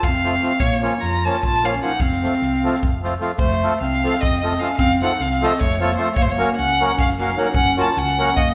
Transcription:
0.03 fingered electric bass F1, violin F5, kick
0.08 clarinet C4
0.14 snare
0.24 accordion F3 A3 C4 F4, snare
0.34 snare
0.42 accordion F3 A3 C4 F4, snare
0.59 fingered electric bass A#1, clarinet A#3, violin C#5, kick
0.72 snare
0.82 accordion F3 A#3 C#4 F4, violin C#5, snare
0.86 clarinet A#3
1.00 fingered electric bass F2, clarinet F4, violin A#5, snare
1.13 snare
1.24 accordion F3 A#3 C#4 F4, clarinet F4, violin A5, snare
1.34 snare
1.43 fingered electric bass A#1, clarinet F4, violin A5, kick
1.54 snare
1.63 accordion F3 A#3 C#4 F4, clarinet C#4, violin F5, snare
1.73 snare
1.81 accordion F3 A#3 C#4 F4, violin F#5, snare
1.85 clarinet D#4
1.99 fingered electric bass F1, clarinet C4, violin F5, kick
2.12 snare
2.23 accordion F3 A3 C4 F4, snare
2.32 snare
2.42 fingered electric bass C2, snare
2.54 snare
2.63 accordion F3 A3 C4 F4, snare
2.75 snare
2.83 fingered electric bass F1, kick
3.03 accordion F3 A3 C4 F4, snare
3.20 accordion F3 A3 C4 F4, snare
3.37 fingered electric bass F1, clarinet A3, violin C5, kick
3.50 snare
3.63 accordion F3 A3 C4 F4 A4, snare
3.80 fingered electric bass C2, clarinet C4, violin F5, snare
3.93 snare
4.03 accordion F3 A3 C4 F4 A4, snare
4.14 snare
4.21 fingered electric bass F1, clarinet C4, violin D#5, kick
4.33 snare
4.40 accordion F3 A3 C4, violin D#5
4.44 clarinet C4, accordion F4 A4
4.53 snare
4.59 accordion F3 A3 C4 F4 A4, clarinet C#4, violin F5, snare
4.77 fingered electric bass F1, clarinet C4, violin F5, kick
4.91 snare
5.01 accordion F3 A3 C4 F4 A4, clarinet D#4, violin F#5, snare
5.20 fingered electric bass C2, clarinet C4, violin F5, snare
5.31 snare
5.41 accordion F3 A3 C4 F4 A4, violin D#5, snare
5.45 clarinet C4
5.51 snare
5.59 fingered electric bass F1, clarinet A3, violin C#5, kick
5.71 snare
5.80 accordion F3 A3 C4 F4 A4, clarinet A#3, violin C#5, snare
5.91 snare
5.95 accordion F3 A3 C4 F4 A4, violin C5
6.00 clarinet A3
6.15 fingered electric bass F#1, clarinet A#3, violin C#5, kick
6.22 clarinet A3, violin C5
6.28 clarinet A#3, violin C#5, snare
6.37 accordion F#3 A#3 C#4 F#4 A#4, snare
6.56 fingered electric bass C#2, clarinet C#4, violin F#5, snare
6.68 snare
6.80 accordion F#3 A#3 C#4 F#4 A#4
6.89 snare
6.97 fingered electric bass F#1, clarinet C#4, violin F5, kick
7.09 snare
7.19 accordion F#3 A#3 C#4 F#4 A#4, clarinet C#4, violin F5, snare
7.29 snare
7.36 accordion F#3 A#3 C#4 F#4 A#4, clarinet D#4, violin F#5, snare
7.54 fingered electric bass F#1, clarinet C#4, violin F#5, kick
7.66 snare
7.77 accordion F#3 A#3 C#4 F#4 A#4, clarinet F4, snare
7.81 violin A5
7.96 fingered electric bass C#2, clarinet C#4, violin F#5, snare
8.07 snare
8.18 accordion F#3 A#3 C#4 F#4 A#4, snare
8.27 snare
8.36 fingered electric bass F#1, clarinet A#3, violin D#5, kick
8.46 snare

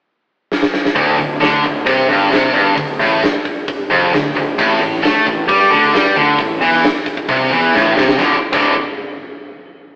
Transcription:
0.52 snare
0.63 snare
0.74 snare
0.85 snare
0.95 picked electric bass D1, distorted electric guitar D2, kick, open hi-hat
1.18 picked electric bass D1, distorted electric guitar D2, open hi-hat
1.41 picked electric bass D2, distorted electric guitar D3, snare, open hi-hat
1.64 picked electric bass D1, distorted electric guitar D2, kick, open hi-hat
1.86 picked electric bass C2, distorted electric guitar C3, kick, open hi-hat
2.09 picked electric bass G1, distorted electric guitar G2, open hi-hat
2.31 picked electric bass C2, distorted electric guitar C3, snare, open hi-hat
2.54 picked electric bass G1, distorted electric guitar G2, open hi-hat
2.76 picked electric bass D1, distorted electric guitar D2, kick, open hi-hat
3.00 picked electric bass A1, distorted electric guitar A2, open hi-hat
3.23 snare, open hi-hat
3.45 kick, open hi-hat
3.68 kick, open hi-hat
3.90 picked electric bass F1, distorted electric guitar F2, open hi-hat
4.13 picked electric bass D1, distorted electric guitar D2, snare, open hi-hat
4.35 picked electric bass D1, distorted electric guitar D2, open hi-hat
4.58 picked electric bass A1, distorted electric guitar A2, kick, crash
4.81 picked electric bass A1, distorted electric guitar A2, open hi-hat
4.94 snare
5.03 picked electric bass A2, distorted electric guitar A3, snare, open hi-hat
5.16 snare
5.26 picked electric bass A1, distorted electric guitar A2, kick, open hi-hat
5.48 picked electric bass G2, distorted electric guitar G3, kick, open hi-hat
5.71 picked electric bass D2, distorted electric guitar D3, open hi-hat
5.93 picked electric bass G2, distorted electric guitar G3, snare, open hi-hat
6.16 picked electric bass D2, distorted electric guitar D3, open hi-hat
6.38 picked electric bass A1, distorted electric guitar A2, kick, open hi-hat
6.61 picked electric bass E2, distorted electric guitar E3, open hi-hat
6.74 snare
6.84 snare, open hi-hat
6.96 snare
7.06 kick, open hi-hat
7.17 kick
7.28 picked electric bass C2, distorted electric guitar C3, kick, open hi-hat
7.51 picked electric bass E2, distorted electric guitar E3, open hi-hat
7.74 picked electric bass A1, distorted electric guitar A2, snare
7.97 picked electric bass C2, distorted electric guitar C3, snare
8.08 snare
8.18 picked electric bass D1, distorted electric guitar D2 A2 D3, kick, snare
8.53 picked electric bass D1, distorted electric guitar D2 A2 D3, kick, crash

